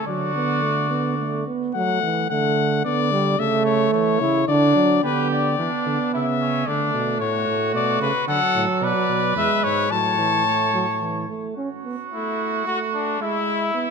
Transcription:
0.07 bass trombone D3, trombone F#3, trumpet F#4 D5
0.35 trombone B3
0.62 trombone A3
0.90 trombone B3
1.19 trombone A3
1.47 trombone B3
1.74 bass trombone F#3, trombone A3, trumpet F#5
2.03 bass trombone E3
2.30 bass trombone D3, trombone A3, trumpet F#5
2.85 bass trombone D3, trombone B3, trumpet D5
3.12 trombone G3
3.39 bass trombone C#3, trombone A3, trumpet E5
3.65 trumpet C#5
3.93 bass trombone E3, trumpet C#5
4.20 bass trombone C#3, trombone E4
4.48 bass trombone D3, trombone D4, trumpet D5
4.75 bass trombone F#3
5.03 bass trombone D3, trombone B3, trumpet G4 B4
5.31 trumpet D5
5.59 bass trombone E3, trombone B3, trumpet D4
5.86 bass trombone D3
6.13 bass trombone C#3, trumpet E4 E5
6.41 trumpet C#4
6.67 bass trombone D3, trombone A3, trumpet D4 D5
6.94 bass trombone B2
7.20 bass trombone A2, trumpet F#4 C#5
7.47 bass trombone A2
7.74 bass trombone B2, trumpet D5
8.01 bass trombone C#3, trumpet B4
8.27 bass trombone D3, trombone F#3, trumpet A4 F#5
8.55 bass trombone A2
8.81 bass trombone B2, trumpet B4 D5
9.09 bass trombone B2
9.36 bass trombone E2, trombone G#3, trumpet E5
9.64 bass trombone G#2, trumpet C#5
9.91 bass trombone A2, trombone F#3, trumpet C#5 A5
10.18 trombone E3
10.46 trombone A3
10.74 trombone F#3
11.01 trombone E3
11.29 trombone A3
11.56 trombone C#4, trumpet F#4
11.84 trombone B3
12.11 trombone A3, trumpet E4
12.66 trombone A3, trumpet F#4
12.94 trumpet D4
13.20 trombone G#3, trumpet E4
13.74 trombone B3

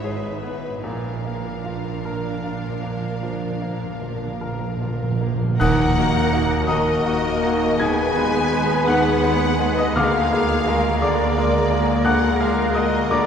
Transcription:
Already playing: double bass section G#1, cello section G#2, grand piano G#2 B3 G#4 B4, viola section D#4, violin section E5
0.04 grand piano G#4, violin section B4
0.42 grand piano B3, violin section B4
0.83 double bass section A#1, cello section A#2, grand piano A#2, timpani A#2, viola section D4, violin section A#4 F5
1.01 timpani A#2
1.09 timpani A#2
1.19 timpani A#2
1.25 timpani A#2, grand piano A#3
1.44 timpani A#2
1.53 timpani A#2
1.64 grand piano F4
1.77 timpani A#2
1.87 timpani A#2
2.05 grand piano A#4
2.11 timpani A#2
2.19 timpani A#2
2.27 timpani A#2
2.35 timpani A#2
2.44 timpani A#2, grand piano F4
2.53 timpani A#2
2.60 timpani A#2
2.69 timpani A#2
2.77 timpani A#2
2.83 timpani A#2, grand piano A#3
2.95 timpani A#2
3.01 timpani A#2
3.10 timpani A#2
3.19 timpani A#2
3.23 timpani A#2, grand piano F3
3.35 timpani A#2
3.44 timpani A#2
3.51 timpani A#2
3.60 timpani A#2, grand piano A#3
3.68 timpani A#2
3.77 timpani A#2
3.85 timpani A#2
3.93 timpani A#2
4.02 timpani A#2, grand piano F4
4.09 timpani A#2
4.18 timpani A#2
4.27 timpani A#2
4.35 timpani A#2
4.41 timpani A#2, grand piano A#4
4.52 timpani A#2
4.59 timpani A#2
4.68 timpani A#2
4.77 timpani A#2
4.81 timpani A#2, grand piano F4
4.94 timpani A#2
5.02 timpani A#2
5.10 timpani A#2
5.18 timpani A#2, grand piano A#3
5.27 timpani A#2
5.34 timpani A#2
5.42 timpani A#2
5.49 timpani A#2
5.58 double bass section D#2, grand piano D#2 D#3 F#5 D#6 F#6, timpani D#3, french horn section A#3 A#4, viola section A#3 A#4, cello section A#4, violin section F#5, concert bass drum, crash
5.98 grand piano A#3 D#4 F#4
6.33 grand piano A#3 D#4 F#4
6.66 grand piano D#2 D#3 D#5 A#5 D#6, french horn section A#3 A#4, viola section A#3 A#4, cello section F#4, violin section D#5
7.05 grand piano A#3 D#4 F#4
7.43 grand piano A#3 D#4 F#4
7.79 double bass section D#2, grand piano D#2 D#3 G#5 D#6 G#6, timpani D#3, french horn section B3 G#4, viola section B3 G#4, cello section B4, violin section G#5
8.17 grand piano G#3 D#4 B4
8.53 grand piano G#3 D#4 B4
8.88 grand piano D#2 D#3 F#5 F#6, violin section F#5
9.23 grand piano G#3 D#4 B4
9.59 grand piano G#3 D#4 B4
9.78 violin section D#5, grand piano D#5 D#6
9.95 double bass section D2, grand piano D2 D3 F5 D6 F6, viola section A#3 G#4, french horn section A#3 G#4, cello section A#4, violin section F5
10.32 grand piano G#3 F4 A#4, cello section G#4
10.67 grand piano G#3 F4 A#4, cello section A#4
11.01 grand piano D2 D3 D5 A#5 D6, viola section A#3 G#4, french horn section A#3 G#4, violin section D5
11.37 grand piano G#3 F4 A#4
11.71 grand piano G#3 F4 A#4
12.05 grand piano D2 D3 F#5 D6 F#6, violin section F#5
12.40 grand piano G#3 F4 A#4 F5 F6, violin section F5
12.74 grand piano G#3 F4 A#4 D#5 D#6, violin section D#5
13.09 grand piano D2 D3 D5 A#5 D6, viola section A#3 G#4, french horn section A#3 G#4, violin section D5

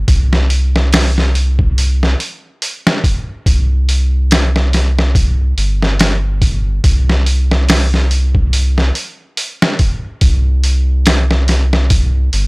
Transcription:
0.08 sub bass C2, kick, open hi-hat
0.33 snare
0.50 open hi-hat
0.76 snare
0.93 snare, open hi-hat
1.18 snare
1.35 open hi-hat
1.59 kick
1.78 open hi-hat
2.03 snare
2.20 open hi-hat
2.62 open hi-hat
2.87 snare
3.04 kick, open hi-hat
3.46 sub bass C2, kick, open hi-hat
3.89 open hi-hat
4.31 snare, open hi-hat
4.56 snare
4.73 snare, open hi-hat
4.99 snare
5.15 kick, open hi-hat
5.57 sub bass G1, open hi-hat
5.83 snare
5.99 snare, open hi-hat
6.42 kick, open hi-hat
6.84 sub bass C2, kick, open hi-hat
7.10 snare
7.26 open hi-hat
7.51 snare
7.69 snare, open hi-hat
7.94 snare
8.11 open hi-hat
8.35 kick
8.53 open hi-hat
8.78 snare
8.95 open hi-hat
9.37 open hi-hat
9.62 snare
9.79 kick, open hi-hat
10.21 sub bass C2, kick, open hi-hat
10.64 open hi-hat
11.06 snare, open hi-hat
11.31 snare
11.48 snare, open hi-hat
11.73 snare
11.90 kick, open hi-hat
12.33 sub bass G1, open hi-hat

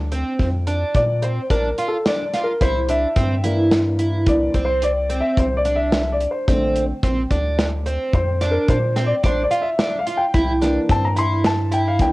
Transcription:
Already playing: analog synth bass D2
0.12 twelve-string acoustic guitar C4, closed hi-hat
0.39 analog synth bass F2, kick, snare, closed hi-hat
0.67 twelve-string acoustic guitar D4, closed hi-hat
0.95 analog synth bass A#2, grand piano D5, kick, closed hi-hat
1.22 twelve-string acoustic guitar C4, grand piano C5, closed hi-hat
1.50 analog synth bass A#1, twelve-string acoustic guitar D4, grand piano A#4, kick, closed hi-hat
1.78 twelve-string acoustic guitar F4, closed hi-hat
1.88 grand piano A4
2.06 twelve-string acoustic guitar D4, grand piano D5, snare, closed hi-hat
2.34 twelve-string acoustic guitar F4, snare, closed hi-hat
2.44 grand piano A#4
2.61 analog synth bass C2, twelve-string acoustic guitar E4, grand piano C5, kick, closed hi-hat
2.89 twelve-string acoustic guitar D4, grand piano E5, closed hi-hat
3.16 analog synth bass G2, twelve-string acoustic guitar C4, kick, closed hi-hat
3.44 grand piano E3 A#3 D4, twelve-string acoustic guitar E4, closed hi-hat
3.71 snare, closed hi-hat
3.99 twelve-string acoustic guitar E4, closed hi-hat
4.26 analog synth bass C2, grand piano E3 A#3 D4 D5, kick, closed hi-hat
4.54 analog synth bass C2, twelve-string acoustic guitar C4, kick, closed hi-hat
4.65 grand piano C5
4.82 grand piano D5, closed hi-hat
5.10 twelve-string acoustic guitar C4, closed hi-hat
5.21 grand piano E5
5.37 analog synth bass C2, grand piano C5, kick, closed hi-hat
5.57 grand piano D5
5.65 twelve-string acoustic guitar D4, closed hi-hat
5.76 grand piano E5
5.92 snare, closed hi-hat
6.12 grand piano D5
6.20 closed hi-hat
6.31 grand piano C5
6.47 analog synth bass A#1, grand piano D3 A3 C4, twelve-string acoustic guitar C4, kick, closed hi-hat
6.76 closed hi-hat
7.03 analog synth bass A#1, twelve-string acoustic guitar C4, kick, closed hi-hat
7.30 analog synth bass D2, twelve-string acoustic guitar D4, kick, closed hi-hat
7.59 snare, closed hi-hat
7.86 twelve-string acoustic guitar C4, closed hi-hat
8.13 analog synth bass F2, grand piano C5, kick, closed hi-hat
8.41 twelve-string acoustic guitar D4, snare, closed hi-hat
8.51 grand piano A#4
8.68 analog synth bass A#2, grand piano C5, kick, closed hi-hat
8.96 twelve-string acoustic guitar C4, snare, closed hi-hat
9.06 grand piano D5
9.23 analog synth bass A#1, twelve-string acoustic guitar D4, grand piano C5, kick, closed hi-hat
9.43 grand piano D5
9.51 twelve-string acoustic guitar F4, closed hi-hat
9.62 grand piano E5
9.79 twelve-string acoustic guitar D4, snare, closed hi-hat
9.99 grand piano F5
10.07 twelve-string acoustic guitar F4, closed hi-hat
10.17 grand piano G5
10.34 analog synth bass C2, twelve-string acoustic guitar E4, kick, closed hi-hat
10.62 grand piano E3 A#3 D4, twelve-string acoustic guitar D4, snare, closed hi-hat
10.89 analog synth bass G2, twelve-string acoustic guitar C4, grand piano A5, kick, closed hi-hat
11.05 grand piano A#5
11.16 twelve-string acoustic guitar E4, grand piano C6, closed hi-hat
11.45 grand piano A5, snare, closed hi-hat
11.71 twelve-string acoustic guitar E4, grand piano G5, closed hi-hat
11.88 grand piano F5
11.99 analog synth bass C2, grand piano E3 A#3 D4 G5, kick, closed hi-hat

